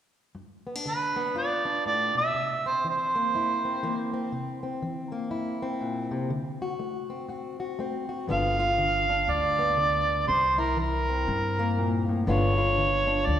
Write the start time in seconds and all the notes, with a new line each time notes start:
0.35 G2
0.67 B3
0.76 D4
0.86 D3 B4
1.16 B3
1.35 G2 F4 D5
1.65 D4
1.86 A2 D5
2.15 B2 E5
2.35 C3
2.66 C4 C5
2.84 E3
2.89 C5
3.16 A#3
3.35 G2 E4
3.65 C4
3.83 E3 A#3
4.13 C4
4.32 C3
4.63 C4
4.82 E3
5.12 A#3
5.30 G2 E4
5.62 C4
5.81 A#2
6.11 C3
6.30 D3
6.62 F#4
6.79 A3
7.10 C4
7.28 A2 F#4
7.60 F#4
7.79 A3 C4
8.09 F#4
8.28 G1 G2 D3 B3 D4 F4
8.32 F5
8.60 F4
8.78 D3
9.10 D4
9.28 D2 G2 D5
9.59 B3
9.77 D3
10.27 C2 C3 C5
10.58 E4 A#4
10.77 E3 A#4
11.09 C4
11.27 G2
11.59 A#3
11.78 A#2
12.08 A2
12.27 G1 G2 D3 B3 D4 F4 C#5
12.58 F4
12.78 D3
13.07 D4
13.26 D2 G2 D5